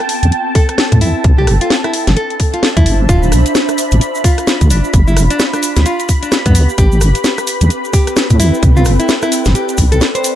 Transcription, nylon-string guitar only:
0, 0, Header, 1, 2, 480
1, 0, Start_track
1, 0, Tempo, 461538
1, 1294, Time_signature, 4, 2, 24, 8
1, 10767, End_track
2, 0, Start_track
2, 0, Title_t, "Nylon-string guitar"
2, 0, Program_c, 0, 24
2, 575, Note_on_c, 0, 69, 90
2, 913, Note_off_c, 0, 69, 0
2, 1053, Note_on_c, 0, 64, 94
2, 1295, Note_off_c, 0, 64, 0
2, 1439, Note_on_c, 0, 67, 91
2, 1583, Note_off_c, 0, 67, 0
2, 1678, Note_on_c, 0, 65, 85
2, 1823, Note_off_c, 0, 65, 0
2, 1918, Note_on_c, 0, 64, 94
2, 2159, Note_off_c, 0, 64, 0
2, 2255, Note_on_c, 0, 69, 94
2, 2496, Note_off_c, 0, 69, 0
2, 2639, Note_on_c, 0, 65, 84
2, 2784, Note_off_c, 0, 65, 0
2, 2880, Note_on_c, 0, 64, 92
2, 3120, Note_off_c, 0, 64, 0
2, 3215, Note_on_c, 0, 65, 98
2, 3456, Note_off_c, 0, 65, 0
2, 4413, Note_on_c, 0, 65, 92
2, 4752, Note_off_c, 0, 65, 0
2, 4895, Note_on_c, 0, 62, 98
2, 5136, Note_off_c, 0, 62, 0
2, 5280, Note_on_c, 0, 64, 95
2, 5424, Note_off_c, 0, 64, 0
2, 5518, Note_on_c, 0, 62, 91
2, 5663, Note_off_c, 0, 62, 0
2, 5759, Note_on_c, 0, 62, 92
2, 6000, Note_off_c, 0, 62, 0
2, 6094, Note_on_c, 0, 65, 95
2, 6336, Note_off_c, 0, 65, 0
2, 6477, Note_on_c, 0, 62, 93
2, 6622, Note_off_c, 0, 62, 0
2, 6719, Note_on_c, 0, 59, 98
2, 6959, Note_off_c, 0, 59, 0
2, 7053, Note_on_c, 0, 67, 107
2, 7295, Note_off_c, 0, 67, 0
2, 8252, Note_on_c, 0, 67, 94
2, 8591, Note_off_c, 0, 67, 0
2, 8733, Note_on_c, 0, 64, 99
2, 8975, Note_off_c, 0, 64, 0
2, 9117, Note_on_c, 0, 65, 94
2, 9262, Note_off_c, 0, 65, 0
2, 9356, Note_on_c, 0, 64, 92
2, 9502, Note_off_c, 0, 64, 0
2, 9596, Note_on_c, 0, 64, 98
2, 9838, Note_off_c, 0, 64, 0
2, 9931, Note_on_c, 0, 67, 94
2, 10174, Note_off_c, 0, 67, 0
2, 10316, Note_on_c, 0, 69, 92
2, 10462, Note_off_c, 0, 69, 0
2, 10556, Note_on_c, 0, 72, 93
2, 10767, Note_off_c, 0, 72, 0
2, 10767, End_track
0, 0, End_of_file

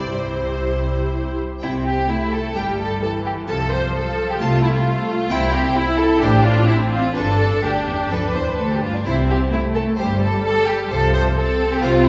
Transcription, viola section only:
0, 0, Header, 1, 2, 480
1, 0, Start_track
1, 0, Key_signature, 0, "major"
1, 0, Tempo, 481928
1, 1619, Time_signature, 4, 2, 24, 8
1, 2086, Tempo, 458015
1, 6406, Tempo, 472441
1, 9766, Tempo, 460829
1, 12437, End_track
2, 0, Start_track
2, 0, Title_t, "Viola section"
2, 0, Program_c, 0, 48
2, 0, Note_on_c, 0, 64, 44
2, 0, Note_on_c, 0, 67, 44
2, 148, Note_off_c, 0, 67, 0
2, 149, Note_off_c, 0, 64, 0
2, 160, Note_on_c, 0, 67, 41
2, 161, Note_on_c, 0, 64, 42
2, 1386, Note_off_c, 0, 64, 0
2, 1386, Note_off_c, 0, 67, 0
2, 1619, Note_on_c, 0, 60, 46
2, 2053, Note_off_c, 0, 60, 0
2, 2079, Note_on_c, 0, 57, 52
2, 2557, Note_off_c, 0, 57, 0
2, 2566, Note_on_c, 0, 55, 47
2, 3053, Note_off_c, 0, 55, 0
2, 3053, Note_on_c, 0, 52, 53
2, 3540, Note_on_c, 0, 53, 55
2, 3541, Note_off_c, 0, 52, 0
2, 4483, Note_off_c, 0, 53, 0
2, 4500, Note_on_c, 0, 57, 66
2, 4961, Note_off_c, 0, 57, 0
2, 4973, Note_on_c, 0, 57, 67
2, 5445, Note_off_c, 0, 57, 0
2, 5452, Note_on_c, 0, 60, 67
2, 5917, Note_off_c, 0, 60, 0
2, 5924, Note_on_c, 0, 64, 74
2, 6402, Note_on_c, 0, 62, 79
2, 6404, Note_off_c, 0, 64, 0
2, 6872, Note_on_c, 0, 60, 76
2, 6875, Note_off_c, 0, 62, 0
2, 7356, Note_off_c, 0, 60, 0
2, 7358, Note_on_c, 0, 62, 67
2, 9015, Note_off_c, 0, 62, 0
2, 9291, Note_on_c, 0, 60, 63
2, 9733, Note_off_c, 0, 60, 0
2, 9764, Note_on_c, 0, 57, 57
2, 10245, Note_off_c, 0, 57, 0
2, 10247, Note_on_c, 0, 55, 59
2, 11209, Note_off_c, 0, 55, 0
2, 11210, Note_on_c, 0, 53, 60
2, 11678, Note_off_c, 0, 53, 0
2, 11684, Note_on_c, 0, 60, 74
2, 12437, Note_off_c, 0, 60, 0
2, 12437, End_track
0, 0, End_of_file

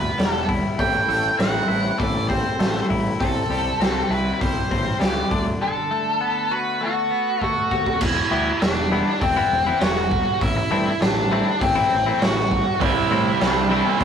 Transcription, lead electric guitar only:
0, 0, Header, 1, 2, 480
1, 0, Start_track
1, 0, Key_signature, 1, "minor"
1, 0, Tempo, 601202
1, 628, Time_signature, 4, 2, 24, 8
1, 11210, End_track
2, 0, Start_track
2, 0, Title_t, "Lead electric guitar"
2, 0, Program_c, 0, 29
2, 0, Note_on_c, 0, 71, 69
2, 256, Note_off_c, 0, 71, 0
2, 256, Note_on_c, 0, 69, 69
2, 355, Note_off_c, 0, 69, 0
2, 633, Note_on_c, 0, 79, 100
2, 1105, Note_off_c, 0, 79, 0
2, 1108, Note_on_c, 0, 78, 93
2, 1585, Note_on_c, 0, 74, 81
2, 1606, Note_off_c, 0, 78, 0
2, 1812, Note_off_c, 0, 74, 0
2, 1826, Note_on_c, 0, 72, 72
2, 2279, Note_off_c, 0, 72, 0
2, 2555, Note_on_c, 0, 69, 76
2, 3279, Note_on_c, 0, 71, 88
2, 3300, Note_off_c, 0, 69, 0
2, 3454, Note_off_c, 0, 71, 0
2, 3463, Note_on_c, 0, 71, 67
2, 3519, Note_off_c, 0, 71, 0
2, 3524, Note_on_c, 0, 72, 85
2, 3971, Note_off_c, 0, 72, 0
2, 3998, Note_on_c, 0, 74, 83
2, 4334, Note_off_c, 0, 74, 0
2, 4485, Note_on_c, 0, 69, 82
2, 5207, Note_on_c, 0, 71, 91
2, 5225, Note_off_c, 0, 69, 0
2, 5452, Note_off_c, 0, 71, 0
2, 5452, Note_on_c, 0, 66, 65
2, 5920, Note_off_c, 0, 66, 0
2, 5930, Note_on_c, 0, 66, 72
2, 5937, Note_on_c, 0, 78, 85
2, 6374, Note_off_c, 0, 66, 0
2, 6406, Note_on_c, 0, 64, 78
2, 6412, Note_off_c, 0, 78, 0
2, 6415, Note_on_c, 0, 76, 101
2, 6851, Note_off_c, 0, 64, 0
2, 6879, Note_on_c, 0, 62, 61
2, 6888, Note_on_c, 0, 74, 86
2, 6902, Note_off_c, 0, 76, 0
2, 7327, Note_off_c, 0, 62, 0
2, 7331, Note_off_c, 0, 74, 0
2, 7354, Note_on_c, 0, 60, 63
2, 7361, Note_on_c, 0, 72, 87
2, 7804, Note_off_c, 0, 60, 0
2, 7844, Note_on_c, 0, 66, 72
2, 7846, Note_on_c, 0, 78, 71
2, 7853, Note_off_c, 0, 72, 0
2, 8288, Note_off_c, 0, 66, 0
2, 8319, Note_off_c, 0, 78, 0
2, 8322, Note_on_c, 0, 76, 79
2, 8325, Note_on_c, 0, 64, 63
2, 8766, Note_off_c, 0, 64, 0
2, 8766, Note_off_c, 0, 76, 0
2, 8796, Note_on_c, 0, 62, 68
2, 8799, Note_on_c, 0, 74, 86
2, 9241, Note_off_c, 0, 62, 0
2, 9271, Note_on_c, 0, 60, 65
2, 9276, Note_off_c, 0, 74, 0
2, 9279, Note_on_c, 0, 72, 79
2, 9718, Note_off_c, 0, 60, 0
2, 9755, Note_on_c, 0, 66, 59
2, 9761, Note_on_c, 0, 78, 78
2, 9766, Note_off_c, 0, 72, 0
2, 10199, Note_off_c, 0, 66, 0
2, 10233, Note_off_c, 0, 78, 0
2, 10236, Note_on_c, 0, 76, 91
2, 10242, Note_on_c, 0, 64, 76
2, 10680, Note_off_c, 0, 64, 0
2, 10704, Note_on_c, 0, 74, 84
2, 10707, Note_on_c, 0, 62, 67
2, 10723, Note_off_c, 0, 76, 0
2, 11079, Note_off_c, 0, 74, 0
2, 11079, Note_on_c, 0, 72, 84
2, 11151, Note_off_c, 0, 62, 0
2, 11183, Note_off_c, 0, 72, 0
2, 11210, End_track
0, 0, End_of_file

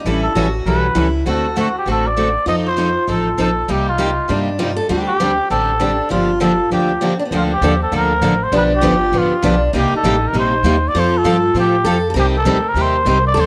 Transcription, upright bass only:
0, 0, Header, 1, 3, 480
1, 0, Start_track
1, 0, Key_signature, -2, "minor"
1, 0, Tempo, 302572
1, 84, Time_signature, 4, 2, 24, 8
1, 11612, Key_signature, -2, "major"
1, 21355, End_track
2, 0, Start_track
2, 0, Title_t, "Upright bass"
2, 0, Program_c, 0, 32
2, 75, Note_on_c, 0, 33, 69
2, 463, Note_off_c, 0, 33, 0
2, 555, Note_on_c, 0, 33, 69
2, 967, Note_off_c, 0, 33, 0
2, 1041, Note_on_c, 0, 35, 72
2, 1451, Note_off_c, 0, 35, 0
2, 1511, Note_on_c, 0, 37, 72
2, 1925, Note_off_c, 0, 37, 0
2, 1999, Note_on_c, 0, 38, 71
2, 2770, Note_off_c, 0, 38, 0
2, 2952, Note_on_c, 0, 33, 70
2, 3726, Note_off_c, 0, 33, 0
2, 3906, Note_on_c, 0, 41, 67
2, 4682, Note_off_c, 0, 41, 0
2, 4880, Note_on_c, 0, 33, 72
2, 5291, Note_off_c, 0, 33, 0
2, 5365, Note_on_c, 0, 34, 69
2, 5774, Note_off_c, 0, 34, 0
2, 5845, Note_on_c, 0, 36, 67
2, 6614, Note_off_c, 0, 36, 0
2, 6806, Note_on_c, 0, 43, 71
2, 7576, Note_off_c, 0, 43, 0
2, 7759, Note_on_c, 0, 38, 76
2, 8532, Note_off_c, 0, 38, 0
2, 8728, Note_on_c, 0, 33, 75
2, 9498, Note_off_c, 0, 33, 0
2, 9681, Note_on_c, 0, 31, 69
2, 10454, Note_off_c, 0, 31, 0
2, 10637, Note_on_c, 0, 38, 64
2, 11027, Note_off_c, 0, 38, 0
2, 11597, Note_on_c, 0, 38, 80
2, 12070, Note_off_c, 0, 38, 0
2, 12077, Note_on_c, 0, 39, 84
2, 12550, Note_off_c, 0, 39, 0
2, 12557, Note_on_c, 0, 38, 83
2, 13019, Note_off_c, 0, 38, 0
2, 13029, Note_on_c, 0, 33, 90
2, 13505, Note_off_c, 0, 33, 0
2, 13512, Note_on_c, 0, 35, 82
2, 13986, Note_off_c, 0, 35, 0
2, 14000, Note_on_c, 0, 31, 87
2, 14457, Note_off_c, 0, 31, 0
2, 14466, Note_on_c, 0, 33, 86
2, 14734, Note_off_c, 0, 33, 0
2, 14957, Note_on_c, 0, 35, 88
2, 15428, Note_off_c, 0, 35, 0
2, 15441, Note_on_c, 0, 36, 79
2, 15702, Note_off_c, 0, 36, 0
2, 15919, Note_on_c, 0, 33, 93
2, 16378, Note_off_c, 0, 33, 0
2, 16387, Note_on_c, 0, 34, 82
2, 16853, Note_off_c, 0, 34, 0
2, 16862, Note_on_c, 0, 39, 87
2, 17340, Note_off_c, 0, 39, 0
2, 17360, Note_on_c, 0, 41, 75
2, 17822, Note_off_c, 0, 41, 0
2, 17831, Note_on_c, 0, 43, 83
2, 18304, Note_off_c, 0, 43, 0
2, 18310, Note_on_c, 0, 45, 86
2, 18778, Note_off_c, 0, 45, 0
2, 18787, Note_on_c, 0, 41, 85
2, 19253, Note_off_c, 0, 41, 0
2, 19263, Note_on_c, 0, 36, 78
2, 19739, Note_off_c, 0, 36, 0
2, 19748, Note_on_c, 0, 38, 88
2, 20207, Note_off_c, 0, 38, 0
2, 20216, Note_on_c, 0, 39, 82
2, 20696, Note_off_c, 0, 39, 0
2, 20709, Note_on_c, 0, 36, 97
2, 21174, Note_off_c, 0, 36, 0
2, 21184, Note_on_c, 0, 38, 86
2, 21355, Note_off_c, 0, 38, 0
2, 21355, End_track
3, 0, Start_track
3, 0, Title_t, "Muted upright bass strokes"
3, 14753, Note_on_c, 9, 29, 37
3, 14912, Note_off_c, 9, 29, 0
3, 21355, End_track
0, 0, End_of_file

